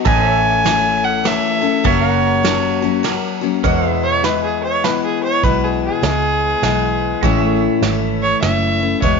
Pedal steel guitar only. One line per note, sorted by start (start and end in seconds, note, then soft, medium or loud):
0.05 1.83 A4 medium
0.05 0.31 B4 medium
0.05 0.27 D#5 medium
0.27 1.83 E5 medium
0.31 1.83 C#5 medium
1.85 2.05 A4 medium
1.85 3.63 C#5 medium
1.85 2.12 E5 medium
2.05 3.62 A#4 medium
2.12 3.63 F#5 medium
3.64 3.89 A#4 medium
3.64 3.90 C#5 medium
3.64 3.91 F#5 medium
3.89 7.19 G#4 medium
3.89 7.19 B4 medium
3.89 7.20 E5 medium
7.23 7.43 G#3 medium
7.23 9.01 C#5 medium
7.23 9.02 E5 medium
7.43 9.00 A3 medium